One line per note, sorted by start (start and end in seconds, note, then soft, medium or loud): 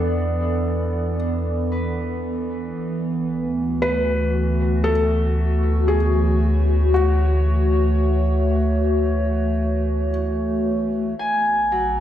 0.00 2.73 E2 medium
0.00 11.20 E3 medium
0.00 11.30 E3 medium
0.00 0.89 F#3 soft
0.00 6.11 B3 medium
0.00 11.31 B3 medium
0.00 2.80 D4 medium
0.00 1.16 A4 medium
0.00 2.78 A4 medium
0.00 2.78 D5 medium
1.72 4.90 B4 soft
2.78 11.15 D2 medium
3.25 11.20 A3 medium
3.38 12.00 F#4 medium
3.82 4.91 B4 medium
4.84 5.95 A4 medium
5.65 12.00 C#5 medium
5.88 6.92 G#4 medium
6.94 10.08 F#4 medium
11.19 12.00 A1 medium
11.19 12.00 C#3 medium
11.19 12.00 G#5 medium
11.53 12.00 A3 medium
11.72 12.00 F#3 soft